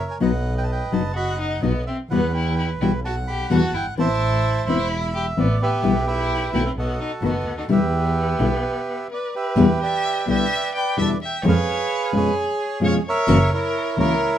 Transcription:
Already playing: bandoneon A#4 C#5
0.11 bandoneon G#5
0.20 double bass B1, nylon-string guitar B2 F#3 B3 D#4 F#4, bandoneon B4 D#5 F#5
0.58 bandoneon G5
0.64 bandoneon A5
0.72 bandoneon G5
0.91 double bass F#1, nylon-string guitar B2 F#3 B3 D#4 F#4, bandoneon A5
1.14 violin F#4, bandoneon D#5 F#5 B5
1.39 violin D#4, bandoneon F#5
1.62 double bass B1, nylon-string guitar B2 F#3 B3 D#4 F#4, violin B3, bandoneon D#5
1.87 violin C4, bandoneon E5
2.10 double bass E2, nylon-string guitar B2 E3 G3 B3 F#4, violin B3, bandoneon B4 F#5
2.34 violin E4, bandoneon G5
2.56 violin E4, bandoneon G5
2.81 double bass B1, nylon-string guitar B2 E3 G3 B3 F#4, violin E4, bandoneon G5
3.05 violin F#4, bandoneon F#5 A5
3.28 violin G4, bandoneon B5
3.50 double bass E2, nylon-string guitar B2 E3 G3 B3 F#4, violin F#4, bandoneon A5
3.74 double bass G1, violin E4, bandoneon G5
3.97 double bass A1, nylon-string guitar E3 B3 C4 E4, violin E4, bandoneon C5 E5 A5
4.67 double bass E1, nylon-string guitar E3 B3 C4 E4, violin E4, bandoneon E5 B5
5.15 violin G4, bandoneon B5
5.37 double bass A1, nylon-string guitar E3 B3 C4 E4, violin B3, bandoneon D5
5.62 violin B3, bandoneon G4 B4 E5
5.83 double bass B1, nylon-string guitar B2 E3 G3 B3 E4
6.08 violin E4, bandoneon B4 E5 G5
6.53 double bass B1, nylon-string guitar B2 D#3 A3 B3 F#4, violin E4, bandoneon G5
6.65 violin C4, bandoneon E5
6.77 double bass B1, violin B3, bandoneon F#4 A4 D#5
7.00 violin D#4, bandoneon F#5
7.22 double bass F#1, nylon-string guitar B2 D#3 A3 B3 F#4, violin B3, bandoneon F#4 A4 D#5
7.46 double bass D2
7.58 violin D#4, bandoneon F#5
7.68 double bass E2, nylon-string guitar B2 D3 G3 B3 E4, violin B3, bandoneon G4 B4 E5
8.39 double bass B1, nylon-string guitar B2 D3 G3 B3 E4
9.12 violin B4, bandoneon D5
9.36 bandoneon G4 B4 E5, violin B4
9.56 double bass E2, nylon-string guitar B2 D3 G3 B3 E4
9.83 bandoneon B4 D5 G5, violin E5
10.26 double bass B1, nylon-string guitar B2 D3 G3 B3 E4, violin E5
10.30 bandoneon B4 D5 G5
10.75 violin G5, bandoneon B5
10.97 double bass E2, nylon-string guitar B2 D3 G3 B3 E4, violin E5
11.02 bandoneon A5
11.23 violin E5, bandoneon G5
11.43 double bass F2, nylon-string guitar B2 F3 G#3 C#4 F4, violin C#5
11.48 bandoneon G#4 B4 F5
12.12 double bass F2, nylon-string guitar B2 F3 G#3 C#4 F4, violin G#4
12.17 bandoneon G#4 C#5
12.80 double bass F2, nylon-string guitar B2 F3 G#3 C#4 F4
12.84 violin C#5, bandoneon F5
13.06 bandoneon A#4 C#5 E5, violin C#5
13.27 double bass F#1, nylon-string guitar C#3 E3 A#3 C#4 F#4
13.52 bandoneon E4 A#4 C#5, violin A#4
13.97 double bass C#2, nylon-string guitar C#3 E3 A#3 C#4 F#4, bandoneon E4 A#4 C#5, violin A#4

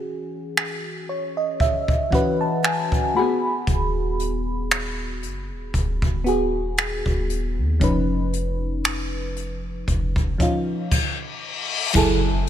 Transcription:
Already playing: fm electric piano E3 C#4 F#4 G#4
0.57 finger snap
1.09 fm electric piano C#5
1.37 fm electric piano D#5
1.60 fm electric piano E5, kick
1.88 kick
2.11 fm electric piano E3 C#4 F#4 F#5, kick
2.15 fm electric piano B4
2.41 fm electric piano A5
2.65 fm electric piano G#5, finger snap
2.92 kick
3.14 fm electric piano A3 F#4 B5
3.19 fm electric piano B3 G#4
3.67 808-style bass D#1, kick, closed hi-hat
4.19 closed hi-hat
4.71 finger snap, closed hi-hat
5.23 808-style bass F#1, closed hi-hat
5.51 808-style bass D#1
5.74 808-style bass D#1, kick, closed hi-hat
6.02 kick
6.24 fm electric piano B3 F#4, closed hi-hat
6.28 fm electric piano G#4
6.77 finger snap, closed hi-hat
7.06 808-style bass D#1, kick
7.30 closed hi-hat
7.58 808-style bass D#2
7.80 808-style bass F1, fm electric piano F3 C#4 D#4, kick, closed hi-hat
7.84 fm electric piano B4
8.33 closed hi-hat
8.85 finger snap, closed hi-hat
9.36 closed hi-hat
9.88 808-style bass F1, kick, closed hi-hat, reverse cymbal
10.16 kick
10.38 fm electric piano F3 C#4 D#4, kick, closed hi-hat
10.42 fm electric piano F4
10.91 kick, crash
11.93 808-style bass F#1, fm electric piano F#3 E4 G#4 A4, kick, crash, impact

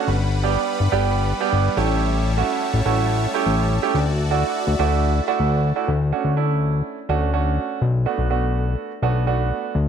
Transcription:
Already playing: supersaw synth F#5
0.08 analog synth bass G1, supersaw synth G3 B4 B5
0.43 grand piano G3 B3 D4 G4
0.80 analog synth bass G1
0.92 analog synth bass G1, grand piano G3 B3 D4 G4
1.40 grand piano G3 B3 D4 G4
1.53 analog synth bass G1
1.77 analog synth bass A1, grand piano A3 C#4 E4 G4, supersaw synth C#5 E5 A5
2.37 grand piano A3 C#4 E4 F#4
2.74 analog synth bass A1
2.85 analog synth bass A1, grand piano A3 C#4 E4 F#4
3.34 grand piano A3 C#4 E4 G4
3.46 analog synth bass A1
3.82 grand piano A3 C#4 E4 G4
3.94 analog synth bass D2, supersaw synth F#4 D5 E5
4.31 grand piano A3 D4 E4 F#4
4.67 analog synth bass D2
4.79 analog synth bass D2, grand piano A3 D4 E4 F#4
5.27 grand piano A3 D4 E4 F#4
5.40 analog synth bass D2
5.76 grand piano A3 D4 E4 F#4
5.88 analog synth bass D2
6.12 grand piano A3 C#4 D4 F#4
6.24 analog synth bass D2
6.36 grand piano A3 C#4 D4 E4
7.09 analog synth bass D2, grand piano A3 C#4 D4 F#4
7.33 grand piano A3 C#4 D4 F#4
7.82 analog synth bass B1
8.06 grand piano A3 B3 D4 F#4
8.18 analog synth bass B1
8.30 grand piano A3 B3 D4 F#4
9.02 analog synth bass B1, grand piano A3 B3 D4 F#4
9.27 grand piano A3 B3 D4 F#4
9.75 analog synth bass D2

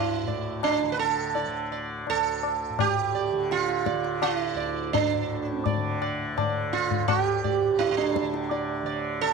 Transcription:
Already playing: tanpura D2 A2 D3, sitar E4
0.22 tanpura A2
0.27 sitar D5, tabla ge
0.63 sitar D4, tabla na
0.83 tanpura D3
0.92 sitar B4
0.99 sitar A4
1.35 sitar D5, tabla tin
1.46 tanpura D3
1.72 sitar D5
2.07 tanpura D2, sitar A4, tabla tin
2.43 tabla na
2.70 tanpura A2
2.79 sitar G4, tabla na, tabla ge
3.15 sitar D5
3.32 tanpura D3
3.51 sitar F4, tabla te
3.68 tabla te
3.86 sitar D5, tabla ke
3.93 tanpura D3
4.04 tabla te
4.22 sitar F4, tabla na
4.34 sitar E4
4.54 tanpura D2, sitar D5
4.93 sitar D4, tabla tin, tabla ge
5.14 tanpura A2
5.47 sitar C#4
5.59 sitar C4
5.66 sitar D5, tabla tin, tabla ge
5.76 tanpura D3
6.02 sitar D5, tabla na
6.37 tanpura D3, sitar D5, tabla na, tabla ge
6.73 sitar F4, tabla te
6.91 tabla ge
6.99 tanpura D2
7.08 sitar F#4, tabla na, tabla ge
7.23 sitar G4
7.44 sitar D5, tabla ge
7.61 tanpura A2
7.79 sitar E4, tabla te
7.91 sitar E4
7.97 sitar D4, tabla te
8.16 tabla ke
8.22 tanpura D3
8.34 tabla te
8.51 sitar D5, tabla tin
8.83 tanpura D3, sitar D5
9.21 sitar A4, tabla tin

